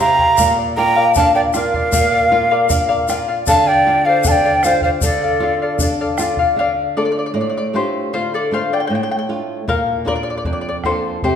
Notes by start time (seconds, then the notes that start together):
Already playing: C3
0.00 E4 G4 C5 E5 F5 G5 A#5
0.19 E4 C5 G5, bombo low
0.37 A#2 A#4 D5 F5, bombo low, shaker
0.56 D5 F5
0.77 F4 A#4 D5 F5 G5 A#5
0.96 A#4 D5 F5
1.15 D4 A#4 D5 F5 A5, bombo low, shaker
1.35 A#4 D5 F5 G5
1.54 F4 A#4 D5 F5, bombo rim, shaker
1.74 D5 F5, bombo low
1.92 A#2 A#4 D5 F5, bombo low, shaker
2.12 D5 F5
2.31 F4 A#4 D5 F5
2.51 A#4 D5 F5
2.69 D4 A#4 D5 F5, bombo low, shaker
2.89 A#4 D5 F5
3.08 F4 A#4 D5 F5, bombo rim, shaker
3.28 D5 F5
3.47 D3 A4 D5 F5 A5, bombo low, shaker
3.66 D5 F5 G5
3.87 F4 A4 D5 F5
4.05 A4 C5 D5 F5
4.24 D4 A4 D5 F5, bombo low, shaker
4.28 G5 A5
4.45 A4 D5 F5
4.63 F4 A4 C5 D5 F5, bombo rim, shaker
4.82 C5 D5 F5, bombo low
5.01 D3 A4 D5 F5, bombo low, shaker
5.23 D5 F5
5.40 F4 A4 D5 F5
5.62 A4 D5 F5
5.79 D4 A4 D5, bombo low, shaker
5.83 F5
6.01 A4 D5 F5
6.18 F4 A4 D5 F5, bombo rim, shaker
6.37 D5 F5, bombo low
6.56 D3 D5 F5
6.97 A3 D4 F4 A4 D5
7.05 D5
7.12 D5
7.19 D5
7.26 D5
7.34 A2 D5
7.41 D5
7.50 D5
7.57 D5
7.74 A3 D4 F4 G4 C5
8.13 D3 F4 C5
8.34 A4 D5
8.51 A3 D4 F4 C5 F5
8.73 D5 G5
8.80 G5
8.87 A2 G5
8.95 G5
9.03 G5
9.11 G5
9.19 G5
9.29 A3 D4 F4
9.68 A#2 A#4 F5, bombo low
10.05 A#3 D4 F4 A#4 D5, bombo low
10.16 D5
10.23 D5
10.30 D5
10.37 D5
10.45 F2 D5, bombo low
10.53 D5
10.61 D5
10.69 D5
10.84 A#3 D4 F4 A4 C5, bombo rim, bombo low
11.23 C3 G4 C5, bombo low